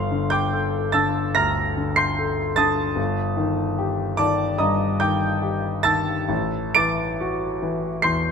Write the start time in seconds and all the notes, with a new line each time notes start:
Already playing: G1 F5 C6 F6
0.11 D3
0.30 G5 D6 G6
0.53 A4
0.92 D3 A5 E6 A6
1.35 D2 A#5 F6 A#6
1.77 D3
1.96 C6 G6 C7
2.19 A4
2.56 D3 A5 D#6 A6
2.96 G1
3.37 D#3
3.78 G4
4.17 D#3 D5 A5 D6
4.58 G2 D#5 A#5 D#6
5.00 D#3 G5 D6 G6
5.42 G4
5.83 D#3 A5 E6 A6
6.29 A1
6.75 E3 D6 A6 D7
7.21 F#4
7.62 E3
8.02 E2 C6 G6 C7